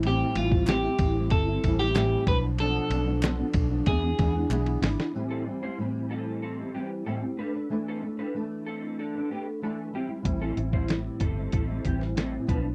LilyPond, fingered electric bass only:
\new Staff \with { instrumentName = "Fingered electric bass" } { \clef bass \time 4/4 \key a \minor \tempo 4 = 94 a,,8 a,,4 a,,8 g,,8 a,,4 b,,8~ | b,,8 b,,4 b,,8 e,8 e,8 b,,8 gis,,16 r16 | r1 | r1 |
a,,8 a,,4 g,,8 a,,8 a,,4 b,,8 | }